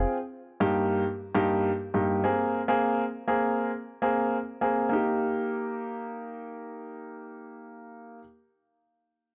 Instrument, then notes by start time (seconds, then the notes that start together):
grand piano
Already playing: C4 F4 G#4 G5
0.60 G2 A#3 D#4 G4
1.35 G2 A#3 D#4 G4
1.94 G2 A#3 D#4 G4
2.24 A#3 C4 G#4
2.68 A#3 C4 G#4
3.28 A#3 C4 G#4
4.02 A#3 C4 G#4
4.61 A#3 C4 G#4
4.89 A#3 D#4
4.93 G4